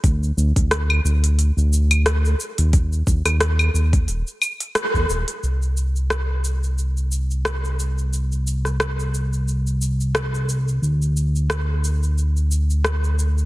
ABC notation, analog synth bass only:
X:1
M:4/4
L:1/16
Q:"Swing 16ths" 1/4=89
K:Cm
V:1 name="Analog synth bass" clef=bass
D,,2 D,, D,,3 D,,3 D,,4- D,, z E,,- | E,,2 E,, E,,3 E,,2 E,,, z4 E,, E,,, z | C,,16- | C,,16 |
D,,16 |]